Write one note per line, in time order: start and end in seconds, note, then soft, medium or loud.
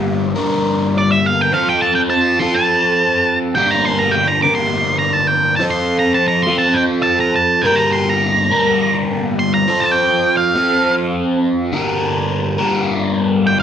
0.00 0.35 G2 medium
0.00 0.36 D3 loud
0.00 0.36 G3 medium
0.00 0.36 A#3 loud
0.00 0.36 D4 loud
0.00 0.34 A#4 medium
0.36 1.52 G2 medium
0.36 1.52 D3 medium
0.36 1.51 G3 medium
0.36 1.52 A#3 medium
0.36 1.52 D4 medium
0.36 1.51 A#4 medium
0.98 1.11 D5 medium
1.11 1.26 E5 medium
1.26 1.41 F5 medium
1.41 1.54 G5 medium
1.52 2.38 F3 medium
1.52 2.39 C4 medium
1.52 2.39 F4 medium
1.52 2.39 A4 loud
1.52 1.69 F5 medium
1.69 1.82 G5 medium
1.82 1.95 A5 medium
1.95 2.00 G5 medium
2.10 2.41 A5 loud
2.39 3.55 F3 medium
2.39 3.55 C4 medium
2.39 3.56 F4 medium
2.39 3.56 A4 medium
2.39 2.55 C6 medium
2.54 3.38 A5 medium
3.55 4.42 G2 medium
3.55 4.42 D3 medium
3.55 4.43 G3 medium
3.55 4.43 A#3 medium
3.55 4.43 D4 loud
3.55 4.42 A#4 loud
3.55 3.71 G5 medium
3.71 3.85 A#5 loud
3.85 3.99 C6 loud
3.99 4.14 A#5 loud
4.11 4.27 G5 medium
4.28 4.42 A#5 medium
4.42 5.60 G2 medium
4.42 5.60 D3 medium
4.42 5.59 G3 medium
4.42 5.59 A#3 medium
4.42 5.59 D4 medium
4.42 5.59 A#4 medium
4.42 4.55 D6 loud
4.55 4.98 C6 medium
4.99 5.13 A#5 medium
5.13 5.27 A5 medium
5.27 5.56 G5 medium
5.56 6.46 F3 medium
5.56 5.61 A5 medium
5.60 6.46 C4 medium
5.60 6.47 F4 medium
5.60 6.47 A4 loud
5.70 5.99 C6 medium
5.99 6.14 A#5 medium
6.14 6.27 A5 medium
6.28 6.42 A#5 medium
6.42 6.58 C6 medium
6.47 7.62 F3 medium
6.47 7.63 C4 medium
6.47 7.63 F4 medium
6.47 7.64 A4 medium
6.58 6.76 A5 medium
6.74 6.82 G5 medium
7.03 7.20 A5 medium
7.20 7.35 A#5 medium
7.36 7.66 A5 medium
7.62 8.50 G2 medium
7.62 8.50 D3 medium
7.62 8.50 G3 medium
7.62 8.51 A#3 medium
7.62 7.78 G5 medium
7.66 8.50 D4 medium
7.66 8.50 A#4 medium
7.76 7.92 A#5 medium
7.93 8.09 C6 medium
8.09 8.96 A#5 medium
8.51 9.68 G2 medium
8.51 9.68 D3 medium
8.51 9.67 G3 medium
8.51 9.67 A#3 medium
8.51 9.67 D4 medium
8.51 9.67 A#4 medium
9.39 9.54 C6 loud
9.54 9.84 A#5 loud
9.68 10.54 F3 medium
9.68 10.54 C4 medium
9.68 10.55 F4 medium
9.68 10.55 A4 medium
9.80 9.91 A5 medium
9.91 10.37 G5 loud
10.37 10.94 F5 medium
10.55 11.71 F3 medium
10.55 11.71 C4 medium
10.55 11.71 F4 medium
10.55 11.72 A4 medium
11.72 12.58 G2 medium
11.72 12.58 D3 loud
11.72 12.58 G3 medium
11.72 12.59 A#3 medium
11.72 12.58 D4 medium
11.72 12.57 A#4 medium
12.58 13.63 G2 medium
12.58 13.63 D3 medium
12.58 13.63 G3 medium
12.58 13.63 A#3 medium
12.58 13.63 D4 medium
12.58 13.63 A#4 medium
13.47 13.59 G5 loud
13.60 13.63 F5 loud